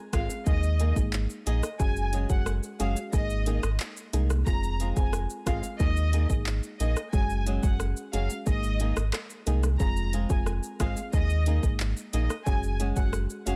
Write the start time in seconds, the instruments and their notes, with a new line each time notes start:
0.13 sub bass G#1, synth pluck G#3 C4 F4 G#4, nylon-string guitar G#3 C4 F4 G#4, violin section F5, kick, cross-stick, closed hi-hat, shaker
0.30 muted nylon-string guitar stroke, shaker
0.46 sub bass D#2, synth pluck G#3 A#3 D#4 G#4, violin section D#5, kick, shaker
0.63 shaker
0.80 nylon-string guitar D#3 A#3 D#4 G#4, closed hi-hat, shaker
0.96 sub bass G#1, synth pluck G#3 A#3 D#4 G#4, muted nylon-string guitar stroke, kick, shaker
1.13 clap, shaker
1.30 shaker
1.46 sub bass A#1, nylon-string guitar D#3 A#3 D#4 G#4, violin section D#5, closed hi-hat, shaker
1.63 cross-stick, shaker
1.79 sub bass F#1, synth pluck G#3 C#4 F#4 G#4, violin section G#5, kick, shaker
1.96 shaker
2.13 nylon-string guitar F#3 G#3 C#4 G#4, closed hi-hat, shaker
2.29 sub bass F#1, synth pluck G#3 C#4 F#4 G#4, violin section F#5, kick, shaker
2.46 cross-stick, shaker
2.63 shaker
2.79 sub bass F#1, nylon-string guitar F#3 G#3 C#4 G#4, synth pluck G#3 C#4 F#4 G#4, violin section F5, closed hi-hat, shaker
2.96 muted nylon-string guitar stroke, shaker
3.13 sub bass G#1, synth pluck G#3 A#3 D#4 G#4, violin section D#5, kick, shaker
3.30 shaker
3.46 nylon-string guitar D#3 A#3 D#4 G#4, closed hi-hat, shaker
3.63 sub bass G#1, cross-stick, shaker
3.80 clap, shaker
3.97 shaker
4.13 sub bass C2, nylon-string guitar D#3 A#3 D#4 G#4, synth pluck G#3 A#3 D#4 G#4, closed hi-hat, shaker
4.30 cross-stick, shaker
4.46 sub bass F1, synth pluck G#3 C4 F4 G#4, violin section A#5, kick, shaker
4.63 shaker
4.80 nylon-string guitar G#3 C4 F4 G#4, closed hi-hat, shaker
4.96 sub bass F1, synth pluck G#3 C4 F4 G#4, violin section G#5, kick, shaker
5.13 cross-stick, shaker
5.30 shaker
5.46 sub bass G#1, synth pluck G#3 C4 F4 G#4, nylon-string guitar G#3 C4 F4 G#4, violin section F5, kick, cross-stick, closed hi-hat, shaker
5.63 muted nylon-string guitar stroke, shaker
5.79 sub bass D#2, synth pluck G#3 A#3 D#4 G#4, violin section D#5, kick, shaker
5.97 shaker
6.13 nylon-string guitar D#3 A#3 D#4 G#4, closed hi-hat, shaker
6.29 sub bass G#1, synth pluck G#3 A#3 D#4 G#4, muted nylon-string guitar stroke, kick, shaker
6.46 clap, shaker
6.63 shaker
6.80 sub bass A#1, nylon-string guitar D#3 A#3 D#4 G#4, violin section D#5, closed hi-hat, shaker
6.96 cross-stick, shaker
7.13 sub bass F#1, synth pluck G#3 C#4 F#4 G#4, violin section G#5, kick, shaker
7.30 shaker
7.46 nylon-string guitar F#3 G#3 C#4 G#4, closed hi-hat, shaker
7.63 sub bass F#1, synth pluck G#3 C#4 F#4 G#4, violin section F#5, kick, shaker
7.80 cross-stick, shaker
7.97 shaker
8.13 sub bass F#1, nylon-string guitar F#3 G#3 C#4 G#4, synth pluck G#3 C#4 F#4 G#4, violin section F5, closed hi-hat, shaker
8.30 muted nylon-string guitar stroke, shaker
8.46 sub bass G#1, synth pluck G#3 A#3 D#4 G#4, violin section D#5, kick, shaker
8.63 shaker
8.80 nylon-string guitar D#3 A#3 D#4 G#4, closed hi-hat, shaker
8.97 sub bass G#1, muted nylon-string guitar stroke, cross-stick, shaker
9.13 cross-stick, clap, shaker
9.30 shaker
9.46 sub bass C2, nylon-string guitar D#3 A#3 D#4 G#4, synth pluck G#3 A#3 D#4 G#4, closed hi-hat, shaker
9.63 cross-stick, shaker
9.80 sub bass F1, synth pluck G#3 C4 F4 G#4, violin section A#5, kick, shaker
9.96 shaker
10.13 nylon-string guitar G#3 C4 F4 G#4, closed hi-hat, shaker
10.29 sub bass F1, synth pluck G#3 C4 F4 G#4, violin section G#5, kick, shaker
10.46 cross-stick, shaker
10.63 shaker
10.80 sub bass G#1, synth pluck G#3 C4 F4 G#4, nylon-string guitar G#3 C4 F4 G#4, violin section F5, kick, cross-stick, closed hi-hat, shaker
10.97 muted nylon-string guitar stroke, shaker
11.13 sub bass D#2, synth pluck G#3 A#3 D#4 G#4, violin section D#5, kick, shaker
11.30 shaker
11.46 nylon-string guitar D#3 A#3 D#4 G#4, closed hi-hat, shaker
11.63 sub bass G#1, synth pluck G#3 A#3 D#4 G#4, muted nylon-string guitar stroke, kick, shaker
11.80 clap, shaker
11.97 shaker
12.13 sub bass A#1, nylon-string guitar D#3 A#3 D#4 G#4, violin section D#5, closed hi-hat, shaker
12.30 cross-stick, shaker
12.46 sub bass F#1, synth pluck G#3 C#4 F#4 G#4, violin section G#5, kick, shaker
12.63 shaker
12.80 nylon-string guitar G#3 C#4 F#4 G#4, closed hi-hat, shaker
12.96 sub bass F#1, synth pluck G#3 C#4 F#4 G#4, violin section F#5, kick, shaker
13.13 cross-stick, shaker
13.30 shaker
13.46 sub bass F#1, synth pluck G#3 C#4 F#4 G#4, nylon-string guitar G#3 C#4 F#4 G#4, violin section F5, closed hi-hat, shaker